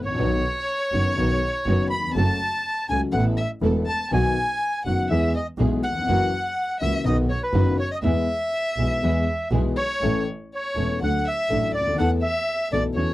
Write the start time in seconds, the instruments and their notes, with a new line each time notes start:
Already playing: double bass A1
0.06 grand piano A1, bandoneon C#5, violin C#5
0.14 grand piano A#1, string section D#4 F#4 B4
0.19 double bass B1, grand piano B1 B2 D#3 F#3 B3 F#4
0.91 double bass F#1, grand piano F#1 F#2 D#3 F#3 B3 F#4, string section D#4 F#4 B4
1.17 grand piano B1 B2 D#3 F#3 B3 F#4, double bass B1, string section D#4 F#4 B4
1.66 double bass F#1, grand piano F#1 F#2 D#3 F#3 B3 F#4, string section D#4 F#4 B4
1.90 violin B5, bandoneon B5
1.99 grand piano D#2
2.05 grand piano E2 F2
2.14 double bass F#1, grand piano F#2 C#3 F#3 A3 F#4, string section C#4 F#4 A4, violin A5, bandoneon A5
2.89 double bass C#2, grand piano C#2 C#3 F#3 A3 F#4, string section C#4 F#4 A4, violin G#5, bandoneon G#5
3.12 grand piano A1 A2 E3 A3 B3 A4, double bass A1, string section B3 E4 A4, violin F#5, bandoneon F#5
3.37 violin E5, bandoneon E5
3.61 grand piano E1 E2 E3 A3 B3 A4, double bass E1, string section B3 E4 A4
3.87 violin A5, bandoneon A5
4.11 grand piano B1 B2 D#3 F#3 B3 F#4, double bass B1, string section B3 D#4 F#4, violin G#5, bandoneon G#5
4.85 double bass F#1, grand piano F#1 F#2 D#3 F#3 B3 F#4, string section B3 D#4 F#4, violin F#5, bandoneon F#5
5.09 double bass E2, grand piano E2 E3 G#3 B3 G#4, string section B3 E4 G#4, violin E5, bandoneon E5
5.35 violin D#5, bandoneon D#5
5.58 double bass B1, grand piano B1 B2 E3 G#3 B3 G#4, string section B3 E4 G#4
5.83 violin F#5, bandoneon F#5
5.90 grand piano D#2
5.97 grand piano E2
6.01 grand piano F2
6.07 double bass F#1, grand piano F#2 E3 F#3 A#3 C#4 F#4, string section A#3 E4 F#4
6.80 double bass C#2, grand piano C#2 C#3 E3 A#3 C#4 F#4, string section A#3 E4 F#4, violin E5, bandoneon E5
7.04 double bass B1, grand piano B1 B2 D#3 F#3 B3 F#4, string section B3 D#4 F#4, violin D#5, bandoneon D#5
7.29 violin C#5, bandoneon C#5
7.43 bandoneon B4, violin B4
7.53 double bass F#1, grand piano F#1 F#2 D#3 F#3 B3 F#4, string section B3 D#4 F#4
7.80 violin C#5, bandoneon C#5
7.92 violin D#5, bandoneon D#5
8.03 double bass E2, grand piano E2 E3 G#3 B3 G#4, string section B3 E4 G#4, bandoneon E5, violin E5
8.76 double bass B1, grand piano B1 B2 E3 G#3 B3 G#4, string section B3 E4 G#4
9.02 double bass E2, grand piano E2 E3 G#3 B3 G#4, string section B3 E4 G#4
9.51 double bass B1, grand piano B1 B2 E3 G#3 B3 G#4, string section B3 E4 G#4
9.76 violin C#5, bandoneon C#5
10.01 double bass A1, grand piano A1 A2 E3 A3 C#4 A4, string section C#4 E4 A4
10.55 violin C#5, bandoneon C#5
10.75 double bass E1, grand piano E1 E2 E3 A3 C#4 A4, string section C#4 E4 A4
10.99 double bass D2, grand piano D2 D3 F#3 A3 D4 A4, string section D4 F#4 A4, violin F#5
11.04 bandoneon F#5
11.28 bandoneon E5, violin E5
11.49 grand piano A1 A2 F#3 A3 D4 A4, double bass A1, string section D4 F#4 A4
11.75 double bass D2, bandoneon D5, violin D5
11.81 grand piano C#2
11.87 grand piano D2
11.94 grand piano D#2, string section B3
11.98 double bass E2, grand piano E2 E3 A3 B3 A4, string section E4 A4, bandoneon F#5, violin F#5
12.22 bandoneon E5, violin E5
12.71 double bass B1, grand piano B1 B2 E3 A3 B3 A4, string section B3 E4 A4, bandoneon D5, violin D5
12.95 double bass E2, grand piano E2 E3 A3 C#4 F#4, string section C#4 F#4 A4, violin C#5, bandoneon C#5